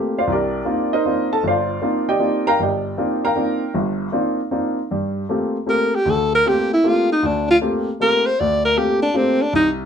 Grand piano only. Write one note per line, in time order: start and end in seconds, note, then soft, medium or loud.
0.00 0.16 A3 soft
0.00 0.17 A#3 soft
0.00 0.17 C4 soft
0.00 0.17 F4 soft
0.00 0.17 G4 medium
0.18 0.30 F4 medium
0.18 0.29 C5 medium
0.18 0.29 D5 medium
0.18 0.29 F5 medium
0.27 0.61 C2 medium
0.32 0.64 D4 medium
0.32 0.90 G4 medium
0.32 0.90 A#4 medium
0.32 0.90 D5 medium
0.65 0.92 A#3 medium
0.65 0.93 C4 soft
0.65 0.93 D4 soft
0.65 0.92 D#4 soft
0.65 0.93 F4 medium
0.93 1.04 D#4 medium
0.93 1.41 A#4 medium
0.93 1.41 C5 medium
0.93 1.40 D#5 medium
1.06 1.32 A#3 medium
1.06 1.32 C4 soft
1.06 1.32 D4 soft
1.06 1.32 D#4 soft
1.06 1.32 F4 medium
1.33 1.44 A4 medium
1.33 1.44 A5 medium
1.43 1.76 G1 medium
1.47 1.82 F4 medium
1.47 2.05 C5 medium
1.47 2.05 D5 medium
1.47 2.05 F5 medium
1.82 2.08 A#3 medium
1.82 2.09 C4 medium
1.82 2.09 D4 soft
1.82 2.09 D#4 medium
1.82 2.09 F4 medium
2.09 2.56 G4 medium
2.09 2.56 D5 medium
2.09 2.56 D#5 medium
2.09 2.47 G5 medium
2.19 2.46 A#3 medium
2.19 2.47 C4 soft
2.19 2.47 D4 soft
2.19 2.47 D#4 soft
2.19 2.47 F4 medium
2.47 2.59 A#4 medium
2.47 2.60 F5 medium
2.47 2.60 G5 medium
2.47 2.59 A#5 loud
2.59 2.92 G1 medium
2.59 3.21 G4 soft
2.59 3.20 D5 soft
2.59 3.20 D#5 soft
2.59 3.21 G5 medium
2.98 3.24 A#3 medium
2.98 3.24 C4 medium
2.98 3.24 D4 medium
2.98 3.24 D#4 soft
2.98 3.24 F4 medium
3.24 3.72 A#4 medium
3.24 3.72 F5 medium
3.24 3.72 G5 medium
3.24 3.72 A#5 medium
3.36 3.62 A#3 soft
3.36 3.63 C4 soft
3.36 3.63 D4 soft
3.36 3.63 D#4 soft
3.36 3.63 F4 medium
3.74 4.08 G1 medium
3.74 4.08 G2 medium
4.12 4.39 A#3 medium
4.12 4.39 C4 medium
4.12 4.40 D4 medium
4.12 4.40 D#4 soft
4.12 4.40 F4 medium
4.51 4.78 A#3 soft
4.51 4.78 C4 soft
4.51 4.78 D4 soft
4.51 4.78 D#4 soft
4.51 4.78 F4 medium
4.91 5.24 G2 medium
4.91 5.24 G3 medium
5.29 5.56 A3 medium
5.29 5.56 A#3 soft
5.29 5.56 C4 soft
5.29 5.56 F4 soft
5.29 5.56 G4 medium
5.66 5.94 A3 soft
5.66 5.94 A#3 soft
5.66 5.94 C4 soft
5.66 5.94 F4 soft
5.66 5.94 G4 medium
6.05 6.39 D2 medium
6.05 6.39 D3 medium
6.46 6.72 A3 soft
6.46 6.72 A#3 soft
6.46 6.72 C4 soft
6.46 6.72 F4 soft
6.46 6.72 G4 medium
6.84 7.10 A3 soft
6.84 7.10 A#3 soft
6.84 7.10 C4 soft
6.84 7.10 F4 soft
6.84 7.11 G4 medium
7.23 7.56 D2 medium
7.61 7.88 A3 medium
7.61 7.88 A#3 soft
7.61 7.88 C4 soft
7.61 7.88 F4 soft
7.61 7.88 G4 medium
8.00 8.26 A3 soft
8.00 8.26 A#3 soft
8.00 8.26 C4 soft
8.00 8.27 F4 soft
8.00 8.27 G4 medium
8.40 8.72 D2 medium
8.76 9.03 A3 medium
8.76 9.03 A#3 soft
8.76 9.03 C4 soft
8.76 9.03 F4 soft
8.76 9.03 G4 medium
9.14 9.41 A3 soft
9.14 9.41 A#3 soft
9.14 9.41 C4 soft
9.14 9.41 F4 soft
9.14 9.41 G4 medium
9.53 9.86 C2 medium